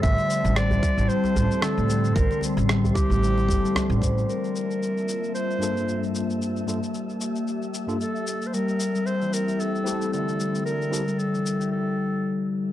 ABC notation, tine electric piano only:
X:1
M:4/4
L:1/16
Q:"Swing 16ths" 1/4=113
K:Gdor
V:1 name="Tine electric piano"
z16 | z16 | z8 z2 [G,,B,DFA]6- | [G,,B,DFA]2 [G,,B,DFA] z8 [G,,B,DFA] z4 |
z8 z2 [CEGA]6- | [CEGA]2 [CEGA] z12 z |]